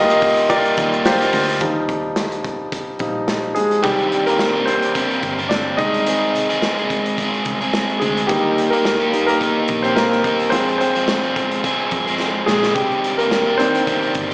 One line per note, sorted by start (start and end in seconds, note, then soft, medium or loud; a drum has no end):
0.00 0.74 D#2 medium
0.00 0.18 A#2 medium
0.00 0.10 D#3 medium
0.00 0.10 G3 medium
0.00 0.49 F4 medium
0.00 0.49 G4 medium
0.00 0.50 A#4 medium
0.00 1.62 D#5 loud
0.09 0.49 A#3 soft
0.09 0.50 D#4 medium
0.09 0.49 F4 medium
0.09 shaker medium
0.21 kick medium
0.21 hi-hat pedal medium
0.21 open hi-hat medium
0.21 shaker soft
0.37 shaker soft
0.49 0.75 G3 medium
0.49 0.76 A#3 medium
0.49 0.77 D#4 medium
0.49 0.99 F4 medium
0.49 0.78 F4 medium
0.49 0.99 G4 medium
0.49 0.99 A#4 medium
0.49 0.99 D5 loud
0.49 kick medium
0.49 hi-hat pedal medium
0.49 open hi-hat medium
0.49 shaker medium
0.65 shaker medium
0.77 1.29 D#2 medium
0.77 1.21 G3 medium
0.77 1.21 A#3 medium
0.77 1.21 D#4 medium
0.77 1.19 F4 medium
0.77 kick loud
0.77 hi-hat pedal medium
0.77 open hi-hat medium
0.77 shaker medium
0.93 shaker soft
1.05 1.55 F4 medium
1.05 1.55 G4 medium
1.05 1.55 A#4 medium
1.05 1.55 C5 medium
1.05 snare loud
1.05 hi-hat pedal medium
1.05 open hi-hat medium
1.05 shaker medium
1.20 1.62 A#3 soft
1.20 1.61 D#4 medium
1.20 1.61 F4 medium
1.20 snare soft
1.20 shaker soft
1.33 1.59 D2 medium
1.33 kick medium
1.33 hi-hat pedal medium
1.33 open hi-hat medium
1.33 shaker medium
1.49 shaker soft
1.61 2.96 D#2 medium
1.61 2.40 F3 medium
1.61 2.41 G3 medium
1.61 2.41 D#4 medium
1.61 kick loud
1.61 closed hi-hat medium
1.89 kick medium
1.89 closed hi-hat medium
2.16 snare medium
2.16 closed hi-hat medium
2.32 closed hi-hat soft
2.44 kick medium
2.44 closed hi-hat medium
2.72 kick medium
2.72 closed hi-hat medium
2.99 3.52 A#1 medium
2.99 3.25 F3 soft
2.99 3.25 G3 soft
2.99 3.25 D#4 soft
2.99 kick medium
2.99 closed hi-hat medium
3.28 snare medium
3.28 closed hi-hat medium
3.55 3.82 G#3 medium
3.55 3.84 G#4 medium
3.55 closed hi-hat medium
3.71 closed hi-hat soft
3.83 5.19 C2 medium
3.83 4.27 D#3 soft
3.83 5.75 D#3 soft
3.83 4.25 G3 medium
3.83 4.26 C4 medium
3.83 4.66 C4 soft
3.83 5.50 D4 medium
3.83 4.26 D4 medium
3.83 4.28 G4 medium
3.83 4.25 G4 medium
3.83 kick loud
3.83 closed hi-hat medium
3.99 closed hi-hat soft
4.12 closed hi-hat medium
4.26 4.55 C3 medium
4.26 4.55 D#3 medium
4.26 4.65 A#3 medium
4.26 4.55 C4 medium
4.26 4.55 D4 medium
4.26 4.53 G4 medium
4.26 4.68 A#4 medium
4.26 closed hi-hat soft
4.39 snare medium
4.54 4.94 C4 soft
4.54 4.95 D4 soft
4.54 4.95 G4 soft
4.66 5.47 C4 medium
4.66 5.53 C5 medium
4.66 closed hi-hat medium
4.83 closed hi-hat soft
4.94 5.38 D#3 medium
4.94 5.39 C4 medium
4.94 5.38 D4 medium
4.94 5.37 G4 medium
4.94 kick medium
4.94 closed hi-hat medium
5.11 closed hi-hat soft
5.23 5.75 G1 medium
5.23 kick medium
5.23 closed hi-hat medium
5.38 5.79 C4 soft
5.38 5.79 D4 soft
5.38 5.78 G4 medium
5.38 closed hi-hat soft
5.49 5.57 D4 medium
5.49 5.55 D5 medium
5.49 snare loud
5.77 6.31 C2 medium
5.77 6.05 D#3 medium
5.77 6.58 G#3 soft
5.77 6.06 G#3 medium
5.77 6.58 C4 soft
5.77 6.07 C4 medium
5.77 6.86 D#4 medium
5.77 6.08 G#4 medium
5.77 6.85 D#5 medium
5.77 kick medium
5.77 closed hi-hat medium
5.94 closed hi-hat soft
6.06 6.50 D#3 medium
6.06 6.49 G#3 medium
6.06 6.49 C4 medium
6.06 6.48 G#4 medium
6.06 closed hi-hat medium
6.35 closed hi-hat medium
6.49 6.79 C3 soft
6.49 6.78 D#3 medium
6.49 6.78 G#3 medium
6.49 6.77 C4 medium
6.49 6.76 G#4 medium
6.49 closed hi-hat soft
6.62 snare medium
6.77 7.17 G#3 soft
6.77 7.18 C4 soft
6.77 7.18 G#4 medium
6.77 closed hi-hat soft
6.90 kick medium
6.90 closed hi-hat medium
7.06 closed hi-hat soft
7.17 7.61 D#3 medium
7.17 7.62 G#3 medium
7.17 7.61 C4 medium
7.17 7.59 G#4 medium
7.17 kick medium
7.17 closed hi-hat medium
7.34 closed hi-hat soft
7.45 7.98 C2 medium
7.45 kick medium
7.45 closed hi-hat medium
7.61 8.00 G#3 soft
7.61 8.01 C4 soft
7.61 8.01 G#4 medium
7.61 closed hi-hat soft
7.74 snare loud
7.90 closed hi-hat soft
8.00 8.28 D2 medium
8.00 8.27 D#3 medium
8.00 8.29 G#3 medium
8.00 8.28 G#3 medium
8.00 8.30 C4 medium
8.00 8.29 G#4 medium
8.00 8.30 G#4 medium
8.00 closed hi-hat medium
8.17 closed hi-hat soft
8.27 9.65 D#2 medium
8.27 8.73 D#3 medium
8.27 8.70 G3 medium
8.27 8.72 A#3 soft
8.27 8.72 A#3 medium
8.27 9.12 D#4 medium
8.27 8.72 D#4 medium
8.27 8.73 G4 medium
8.27 kick loud
8.27 closed hi-hat medium
8.31 8.71 G4 medium
8.58 closed hi-hat medium
8.70 9.02 D#3 medium
8.70 9.11 A#3 medium
8.70 9.01 A#3 medium
8.70 9.00 D#4 medium
8.70 8.98 G4 medium
8.70 9.25 A#4 medium
8.70 closed hi-hat soft
8.85 snare medium
9.00 9.40 A#3 soft
9.00 9.40 D#4 soft
9.00 9.41 G4 medium
9.00 closed hi-hat soft
9.13 9.38 G3 soft
9.13 9.28 A#3 soft
9.13 9.38 D#4 soft
9.13 closed hi-hat medium
9.26 9.81 A#3 medium
9.26 9.85 A#4 loud
9.26 closed hi-hat soft
9.40 9.84 D#3 medium
9.40 9.84 A#3 medium
9.40 9.84 D#4 medium
9.40 9.82 G4 medium
9.40 kick medium
9.40 closed hi-hat medium
9.68 10.21 A#1 medium
9.68 kick medium
9.68 closed hi-hat medium
9.82 10.24 A#3 soft
9.82 9.97 C4 medium
9.82 10.24 D#4 soft
9.82 10.24 G4 medium
9.82 9.96 C5 medium
9.82 closed hi-hat soft
9.95 10.50 A#3 medium
9.95 10.54 A#4 medium
9.95 snare loud
10.12 snare soft
10.24 10.51 D#3 medium
10.24 10.52 A#3 medium
10.24 10.53 D#4 medium
10.24 10.54 G4 medium
10.24 kick medium
10.24 closed hi-hat medium
10.40 closed hi-hat soft
10.50 11.88 F2 medium
10.50 10.95 F3 medium
10.50 12.47 G#3 soft
10.50 10.95 G#3 medium
10.50 10.79 C4 medium
10.50 10.94 C4 medium
10.50 12.72 F4 medium
10.50 10.77 C5 medium
10.50 closed hi-hat medium
10.54 10.94 G#4 medium
10.68 closed hi-hat soft
10.78 11.60 C4 medium
10.78 11.59 C5 medium
10.78 closed hi-hat medium
10.95 11.25 F2 medium
10.95 11.24 C3 medium
10.95 11.24 F3 medium
10.95 11.24 G#3 medium
10.95 11.23 C4 medium
10.95 11.22 G#4 medium
10.95 closed hi-hat soft
11.08 snare loud
11.23 11.62 F3 soft
11.23 11.63 G#3 soft
11.23 11.64 C4 soft
11.23 11.64 G#4 soft
11.23 closed hi-hat soft
11.36 kick medium
11.36 closed hi-hat medium
11.52 closed hi-hat soft
11.63 12.07 F3 medium
11.63 12.07 G#3 medium
11.63 12.07 C4 medium
11.63 12.06 G#4 medium
11.63 kick medium
11.63 closed hi-hat medium
11.91 12.44 F2 medium
11.91 kick medium
11.91 closed hi-hat medium
12.07 12.46 F3 soft
12.07 12.47 G#3 soft
12.07 12.48 C4 soft
12.07 12.48 G#4 medium
12.07 closed hi-hat soft
12.20 snare soft
12.46 12.74 A#1 medium
12.46 12.74 F3 medium
12.46 12.76 G#3 medium
12.46 12.74 G#3 medium
12.46 12.75 C4 medium
12.46 12.76 G#4 medium
12.46 12.77 G#4 medium
12.46 snare medium
12.63 snare medium
12.75 14.11 C2 medium
12.75 13.19 D#3 medium
12.75 13.17 G3 medium
12.75 13.18 C4 medium
12.75 13.18 D4 medium
12.75 13.20 G4 medium
12.75 13.17 G4 medium
12.75 kick loud
12.75 closed hi-hat medium
12.91 closed hi-hat soft
13.04 closed hi-hat medium
13.18 13.48 C3 medium
13.18 13.48 D#3 medium
13.18 13.57 A#3 medium
13.18 13.47 C4 soft
13.18 13.46 D4 medium
13.18 13.45 G4 medium
13.18 13.60 A#4 medium
13.18 closed hi-hat soft
13.31 snare loud
13.46 13.86 C4 soft
13.46 13.87 D4 soft
13.46 13.87 G4 medium
13.58 13.98 D#3 medium
13.58 14.34 C4 medium
13.58 13.98 D4 medium
13.58 14.34 C5 medium
13.58 closed hi-hat medium
13.75 closed hi-hat soft
13.86 14.30 D#3 medium
13.86 14.31 C4 medium
13.86 14.30 D4 medium
13.86 14.29 G4 medium
13.86 kick medium
13.86 closed hi-hat medium
14.03 closed hi-hat soft
14.15 14.34 G1 medium
14.15 kick medium
14.15 closed hi-hat medium
14.30 14.34 G4 medium